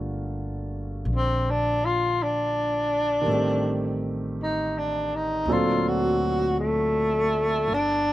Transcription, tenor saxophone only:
1.16 C4
1.50 D4
1.85 F4
2.23 D4
4.43 D#4
4.78 D4
5.15 D#4
5.53 F4
5.88 F#4
6.59 A3
7.73 D4

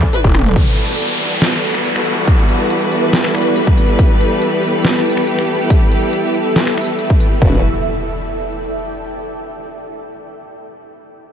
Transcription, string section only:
0.56 E3 G3 B3 F#4 B4
3.99 G4
7.42 E3 G3 B3 F#4 B4

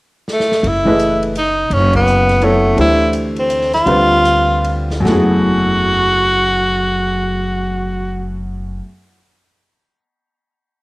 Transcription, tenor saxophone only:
0.33 A3
0.68 E4
1.38 D#4
1.73 C#4
1.96 B3
2.44 A3
2.81 E4
3.39 C4
3.74 F4
5.08 F#4

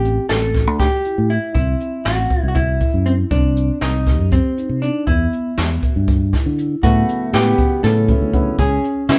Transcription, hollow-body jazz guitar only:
Already playing: G4
0.29 A4
0.80 G4
1.30 E4
1.55 E4
2.05 F#4
2.48 F#4
2.55 E4
3.06 C4
3.31 D4
3.82 D#4
4.33 C4
4.82 D4
5.07 E4
6.83 F#4
7.34 G4
7.84 A4
8.59 G#4
9.09 E4

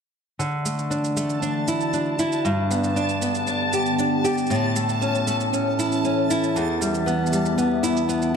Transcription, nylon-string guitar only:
0.39 D3
0.65 A3
0.90 D4
1.16 A3
1.42 D4
1.68 E4
1.93 D4
2.19 E4
2.45 G2
2.70 B3
2.96 D4
3.22 B3
3.47 D4
3.73 G4
3.99 D4
4.24 G4
4.50 A2
4.76 A3
5.01 C#4
5.27 A3
5.53 C#4
5.79 E4
6.05 C#4
6.30 E4
6.56 E2
6.81 G3
7.06 B3
7.32 G3
7.58 B3
7.83 E4
8.09 B3

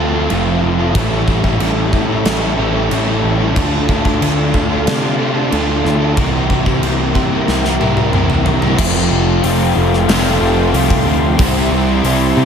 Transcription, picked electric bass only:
Already playing: D2
0.31 F1
0.63 F1
0.95 A1
1.28 A1
1.60 A1
1.93 A2
2.25 A1
2.58 A1
2.91 A1
3.24 A1
3.57 D2
3.89 D2
4.22 D2
4.54 D2
4.87 C3
5.52 D2
5.85 D2
6.17 C2
6.50 C2
6.82 C2
7.15 C3
7.48 C2
7.80 C2
8.13 C2
8.45 C2
8.79 F1
9.10 F1
9.44 F1
9.76 F1
10.08 F1
10.41 F1
10.73 C2
11.05 D2
11.39 C2
11.71 C2
12.04 C2
12.37 C3

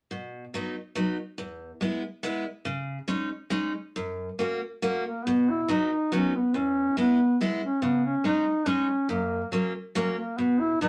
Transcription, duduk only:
5.06 A#3
5.26 B3
5.50 E4
5.71 D#4
6.14 C#4
6.36 B3
6.56 C#4
6.98 B3
7.64 C#4
7.84 B3
8.05 C#4
8.26 D#4
8.68 C#4
9.10 A#3
10.17 A#3
10.38 B3
10.60 E4
10.81 D#4

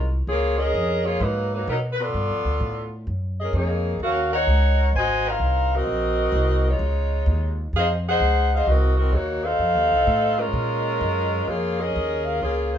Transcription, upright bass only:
Already playing: C2
0.27 C#2
0.74 F2
1.21 G#2
1.68 B2
2.14 G2
2.29 F2
2.45 D2
2.60 A2
3.07 F#2
3.53 F2
4.00 D#2
4.47 C#2
4.93 G#1
5.39 C2
5.87 A#1
6.32 C2
6.79 C#2
7.26 D#2
7.73 F2
8.20 C#2
8.67 C2
9.12 D#2
9.59 F2
9.75 D#2
9.91 C2
10.07 A2
10.53 A#2
11.01 F#2
11.48 F2
11.96 D#2
12.42 C#2

